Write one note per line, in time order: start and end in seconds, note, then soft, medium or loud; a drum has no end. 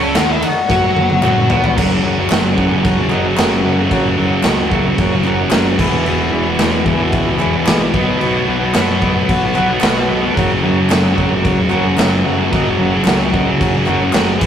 0.00 0.15 C#2 loud
0.00 0.15 C#3 loud
0.00 0.16 C#4 loud
0.00 0.19 A4 loud
0.15 0.41 D#2 medium
0.15 0.42 D#3 loud
0.15 0.43 D#4 loud
0.15 0.33 F#4 medium
0.15 0.30 F#4 loud
0.15 0.33 A#4 medium
0.15 0.34 C#5 medium
0.15 snare loud
0.15 clap medium
0.15 ride loud
0.30 0.43 E4 loud
0.42 1.72 F#4 loud
0.42 0.60 F#4 medium
0.42 0.59 A#4 medium
0.42 0.60 D#5 loud
0.42 ride medium
0.68 1.20 F#2 loud
0.68 1.22 F#3 medium
0.68 0.86 F#4 loud
0.68 1.23 F#4 loud
0.68 0.85 A#4 loud
0.68 0.86 C#5 loud
0.68 kick loud
0.68 snare medium
0.96 1.13 F#4 medium
0.96 1.13 A#4 medium
0.96 1.13 C#5 medium
0.96 high tom medium
1.10 high tom medium
1.21 1.48 F#1 loud
1.21 1.49 F#2 medium
1.21 1.49 F#3 loud
1.21 1.39 F#4 medium
1.21 1.39 A#4 medium
1.21 1.39 C#5 medium
1.21 clap loud
1.21 mid tom loud
1.47 1.75 B1 medium
1.47 1.75 B2 medium
1.47 1.76 B3 loud
1.47 1.65 F#4 medium
1.47 1.65 A#4 medium
1.47 1.66 C#5 loud
1.47 floor tom loud
1.64 floor tom loud
1.75 2.00 F#1 loud
1.75 2.03 F#2 medium
1.75 2.04 C#3 loud
1.75 2.06 F#3 medium
1.75 1.93 F#4 loud
1.75 1.93 A#4 loud
1.75 1.93 C#5 loud
1.75 kick loud
1.75 crash loud
1.75 crash medium
2.03 2.27 F#1 medium
2.03 2.28 F#2 medium
2.03 2.18 C#3 medium
2.03 2.15 F#3 medium
2.03 2.20 F#4 medium
2.03 2.21 A#4 medium
2.03 2.21 C#5 medium
2.16 2.28 C#3 medium
2.16 2.32 F#3 medium
2.29 2.54 F#1 medium
2.29 2.54 F#2 medium
2.29 2.44 C#3 loud
2.29 2.41 F#3 loud
2.29 2.47 F#4 medium
2.29 2.47 A#4 medium
2.29 2.47 C#5 medium
2.29 snare loud
2.29 clap loud
2.29 crash medium
2.43 2.55 C#3 medium
2.43 2.57 F#3 medium
2.55 2.80 F#1 medium
2.55 2.96 F#2 medium
2.55 2.70 C#3 medium
2.55 2.67 F#3 medium
2.55 2.73 F#4 medium
2.55 2.73 A#4 medium
2.55 2.74 C#5 medium
2.55 kick medium
2.68 3.10 C#3 medium
2.68 3.12 F#3 medium
2.83 3.07 E1 medium
2.83 3.00 F#4 medium
2.83 3.00 A#4 medium
2.83 3.01 C#5 loud
2.83 kick loud
2.83 crash medium
3.09 3.34 F#1 medium
3.09 3.34 F#2 medium
3.09 3.25 C#3 medium
3.09 3.21 F#3 medium
3.09 3.27 F#4 loud
3.09 3.27 A#4 loud
3.09 3.27 D#5 loud
3.09 clap medium
3.22 3.36 C#3 medium
3.22 3.38 F#3 medium
3.35 3.61 F#2 loud
3.35 3.64 C#3 loud
3.35 3.53 F#4 loud
3.35 3.53 A#4 loud
3.35 3.54 C#5 loud
3.35 snare loud
3.35 clap loud
3.35 crash medium
3.39 3.61 F#1 medium
3.39 3.65 F#3 loud
3.63 3.88 F#1 medium
3.63 3.88 F#2 medium
3.63 3.78 C#3 medium
3.63 3.81 F#4 medium
3.63 3.82 A#4 medium
3.67 3.74 F#3 medium
3.67 3.82 C#5 medium
3.75 3.90 C#3 medium
3.75 3.91 F#3 medium
3.89 4.14 F#1 loud
3.89 4.15 F#2 medium
3.89 4.17 C#3 medium
3.89 4.18 F#3 loud
3.89 4.08 F#4 loud
3.89 4.08 A#4 loud
3.89 4.08 C#5 loud
3.89 kick loud
3.89 crash medium
4.16 4.41 F#1 loud
4.16 4.41 F#2 medium
4.16 4.31 C#3 medium
4.16 4.27 F#3 medium
4.16 4.34 F#4 medium
4.16 4.35 A#4 medium
4.16 4.35 C#5 medium
4.28 4.42 C#3 medium
4.28 4.44 F#3 medium
4.42 4.91 C#2 medium
4.42 4.68 F#2 medium
4.42 4.58 C#3 medium
4.42 4.55 F#3 loud
4.42 4.62 F#4 medium
4.42 snare loud
4.42 clap medium
4.42 crash medium
4.47 4.62 A#4 medium
4.47 4.62 D#5 medium
4.56 4.70 C#3 medium
4.56 4.71 F#3 medium
4.69 5.10 F#2 medium
4.69 4.86 C#3 medium
4.69 4.81 F#3 medium
4.69 4.88 F#4 medium
4.69 kick medium
4.73 4.89 A#4 medium
4.73 4.89 E5 loud
4.83 5.26 F#3 medium
4.87 5.24 C#3 medium
4.98 5.45 F#1 loud
4.98 5.15 F#4 loud
4.98 5.16 A#4 medium
4.98 5.16 C#5 loud
4.98 kick loud
4.98 crash medium
5.23 5.50 F#2 medium
5.23 5.39 C#3 medium
5.23 5.42 F#4 loud
5.23 5.42 A#4 loud
5.23 clap medium
5.27 5.35 F#3 medium
5.27 5.43 C#5 loud
5.36 5.51 C#3 medium
5.36 5.53 F#3 medium
5.51 5.75 F#1 loud
5.51 5.76 F#2 medium
5.51 5.77 C#3 loud
5.51 5.78 F#3 loud
5.51 5.68 F#4 loud
5.51 5.69 A#4 loud
5.51 5.69 C#5 loud
5.51 snare loud
5.51 clap loud
5.51 crash medium
5.77 6.02 E1 medium
5.77 6.03 E2 medium
5.77 5.91 B2 medium
5.77 5.88 E3 loud
5.77 6.22 G#4 medium
5.77 kick loud
5.77 crash loud
5.81 6.23 B4 medium
5.81 6.23 E5 loud
5.89 6.04 B2 medium
5.89 6.06 E3 medium
6.04 6.29 E1 loud
6.04 6.30 E2 medium
6.04 6.31 B2 medium
6.04 6.33 E3 loud
6.04 crash medium
6.31 6.56 E1 loud
6.31 6.56 E2 medium
6.31 6.47 B2 medium
6.31 6.44 E3 medium
6.31 6.49 G#4 medium
6.31 6.50 B4 medium
6.31 6.50 E5 loud
6.45 6.58 B2 medium
6.45 6.60 E3 medium
6.58 6.82 E1 medium
6.58 6.83 E2 medium
6.58 6.73 B2 medium
6.58 6.70 E3 loud
6.58 6.76 G#4 medium
6.58 6.76 B4 medium
6.58 6.76 C#5 loud
6.58 snare loud
6.58 clap loud
6.58 crash medium
6.71 6.85 B2 medium
6.71 6.86 E3 medium
6.84 7.10 E1 medium
6.84 7.25 E2 medium
6.84 7.00 B2 medium
6.84 6.97 E3 medium
6.84 7.03 G#4 medium
6.84 7.03 B4 medium
6.84 7.03 E5 loud
6.84 kick medium
6.98 7.40 B2 medium
6.98 7.41 E3 medium
7.12 7.37 C#2 medium
7.12 7.29 G#4 medium
7.12 7.29 B4 medium
7.12 7.30 E5 loud
7.12 kick loud
7.12 crash medium
7.39 7.63 E1 medium
7.39 7.65 E2 medium
7.39 7.55 B2 medium
7.39 7.52 E3 medium
7.39 7.56 G#4 loud
7.39 7.56 B4 loud
7.39 7.57 E5 loud
7.39 clap medium
7.54 7.67 B2 medium
7.54 7.69 E3 medium
7.64 7.90 A#1 loud
7.64 7.92 E2 medium
7.64 7.82 G#4 loud
7.64 7.82 B4 loud
7.64 7.83 D#5 loud
7.64 snare loud
7.64 clap loud
7.64 crash medium
7.68 7.91 B2 loud
7.68 7.94 E3 loud
7.92 8.17 B1 medium
7.92 8.17 B2 medium
7.92 8.09 F#3 loud
7.92 8.05 B3 loud
7.92 8.37 F#4 medium
7.92 8.37 B4 medium
7.92 8.38 D#5 loud
7.92 kick loud
8.06 8.20 F#3 medium
8.06 8.20 B3 medium
8.19 8.45 B1 medium
8.19 8.45 B2 medium
8.19 8.48 F#3 medium
8.19 8.49 B3 loud
8.19 crash medium
8.46 8.71 B1 loud
8.46 8.71 B2 medium
8.46 8.63 F#3 medium
8.46 8.58 B3 medium
8.46 8.65 F#4 medium
8.46 8.64 B4 medium
8.46 8.65 C#5 loud
8.59 8.75 F#3 medium
8.59 8.75 B3 medium
8.73 9.22 F#2 medium
8.73 8.99 B2 medium
8.73 8.89 F#3 loud
8.73 8.85 B3 loud
8.73 8.92 F#4 medium
8.73 8.92 B4 medium
8.73 8.92 C#5 loud
8.73 snare loud
8.73 clap medium
8.73 crash medium
8.87 9.01 F#3 medium
8.87 9.03 B3 medium
8.99 9.41 B2 medium
8.99 9.17 F#3 medium
8.99 9.17 F#4 medium
8.99 9.18 B4 medium
8.99 9.18 D#5 medium
8.99 kick medium
9.04 9.13 B3 medium
9.14 9.57 F#3 medium
9.14 9.57 B3 medium
9.29 9.75 B1 loud
9.29 9.46 F#4 medium
9.29 9.46 B4 medium
9.29 9.46 F#5 medium
9.29 kick loud
9.29 crash medium
9.55 9.79 B2 medium
9.55 9.71 F#3 medium
9.55 9.66 B3 medium
9.55 9.72 F#4 loud
9.55 9.72 B4 loud
9.55 9.72 F#5 loud
9.55 clap medium
9.67 9.82 F#3 medium
9.67 9.83 B3 medium
9.80 10.29 B1 medium
9.80 10.07 B2 medium
9.80 10.10 F#3 medium
9.80 10.11 B3 loud
9.80 9.99 F#4 loud
9.80 9.99 B4 loud
9.80 10.00 D#5 loud
9.80 snare loud
9.80 clap loud
9.80 crash medium
10.08 10.34 B2 medium
10.08 10.25 F#3 medium
10.08 10.26 F#4 medium
10.08 10.25 B4 medium
10.08 10.26 D#5 loud
10.12 10.21 B3 medium
10.22 10.38 F#3 medium
10.22 10.35 B3 medium
10.34 10.60 F#1 loud
10.34 10.63 F#2 medium
10.34 10.64 C#3 medium
10.34 10.52 F#4 loud
10.34 10.53 A#4 loud
10.34 10.53 C#5 loud
10.34 kick loud
10.34 crash medium
10.39 10.66 F#3 loud
10.62 10.87 F#1 loud
10.62 10.89 F#2 medium
10.62 10.79 C#3 medium
10.62 10.80 F#4 medium
10.62 10.80 A#4 medium
10.62 10.80 C#5 loud
10.66 10.77 F#3 medium
10.77 10.90 C#3 medium
10.77 10.93 F#3 medium
10.88 11.14 F#1 medium
10.88 11.13 F#2 loud
10.88 11.05 C#3 medium
10.88 11.06 F#4 medium
10.88 11.07 A#4 medium
10.88 11.07 E5 loud
10.88 snare loud
10.88 clap loud
10.88 crash medium
10.93 11.01 F#3 loud
11.02 11.15 C#3 medium
11.02 11.17 F#3 medium
11.14 11.41 F#1 medium
11.14 11.57 F#2 medium
11.14 11.31 C#3 medium
11.14 11.28 F#3 medium
11.14 11.33 F#4 medium
11.14 11.34 A#4 medium
11.14 11.34 C#5 loud
11.14 kick medium
11.29 11.71 C#3 medium
11.29 11.72 F#3 medium
11.42 11.68 E1 medium
11.42 11.60 F#4 medium
11.42 11.60 A#4 medium
11.42 11.61 C#5 loud
11.42 kick loud
11.42 crash medium
11.68 11.94 F#1 loud
11.68 11.96 F#2 medium
11.68 11.85 C#3 medium
11.68 11.87 F#4 loud
11.68 11.87 A#4 loud
11.68 11.88 C#5 loud
11.68 clap medium
11.73 11.82 F#3 medium
11.83 11.97 C#3 medium
11.83 11.99 F#3 medium
11.94 12.22 F#1 medium
11.94 12.24 F#2 loud
11.94 12.13 F#4 loud
11.94 12.14 A#4 loud
11.94 12.15 C#5 loud
11.94 clap medium
11.99 12.26 C#3 loud
11.99 12.27 F#3 loud
11.99 snare loud
11.99 crash medium
12.24 12.49 F#1 medium
12.24 12.50 F#2 medium
12.24 12.39 C#3 medium
12.24 12.42 F#4 medium
12.24 12.42 A#4 medium
12.24 12.42 E5 loud
12.28 12.36 F#3 medium
12.38 12.52 C#3 medium
12.38 12.54 F#3 medium
12.51 12.76 F#1 loud
12.51 12.77 F#2 loud
12.51 12.79 C#3 medium
12.51 12.69 F#4 loud
12.51 12.69 A#4 loud
12.51 12.69 D#5 loud
12.51 kick loud
12.51 crash medium
12.55 12.81 F#3 loud
12.77 13.02 F#1 medium
12.77 13.02 F#2 medium
12.77 12.93 C#3 medium
12.77 12.95 F#4 medium
12.77 12.95 A#4 medium
12.77 12.96 C#5 loud
12.82 12.89 F#3 medium
12.90 13.04 C#3 medium
12.90 13.07 F#3 medium
13.04 13.53 C#2 medium
13.04 13.30 F#2 medium
13.04 13.20 C#3 loud
13.04 13.22 F#4 medium
13.04 13.23 A#4 medium
13.04 13.23 C#5 loud
13.04 snare loud
13.04 clap medium
13.04 crash medium
13.08 13.16 F#3 loud
13.18 13.32 C#3 medium
13.18 13.34 F#3 medium
13.32 13.73 F#2 medium
13.32 13.48 C#3 medium
13.32 13.45 F#3 medium
13.32 13.50 F#4 medium
13.32 13.49 A#4 medium
13.32 13.50 D#5 loud
13.32 kick medium
13.46 13.87 C#3 medium
13.46 13.89 F#3 medium
13.60 14.08 F#1 medium
13.60 13.77 F#4 medium
13.60 13.77 A#4 medium
13.60 13.77 C#5 medium
13.60 kick loud
13.60 crash medium
13.86 14.11 F#2 medium
13.86 14.02 C#3 medium
13.86 13.99 F#3 medium
13.86 14.04 F#4 loud
13.86 14.04 A#4 loud
13.86 14.04 C#5 loud
13.86 clap medium
14.01 14.13 C#3 medium
14.01 14.15 F#3 medium
14.12 14.38 F#1 medium
14.12 14.39 F#2 loud
14.12 14.40 C#3 loud
14.12 14.40 F#3 loud
14.12 14.30 F#4 loud
14.12 14.31 A#4 loud
14.12 14.31 C#5 loud
14.12 snare loud
14.12 clap medium
14.12 crash medium
14.39 14.46 E1 medium
14.39 14.46 E2 loud
14.39 14.46 B2 medium
14.39 14.46 E3 loud
14.39 14.46 G#4 medium
14.39 14.46 B4 medium
14.39 14.46 E5 loud
14.39 kick loud
14.39 crash loud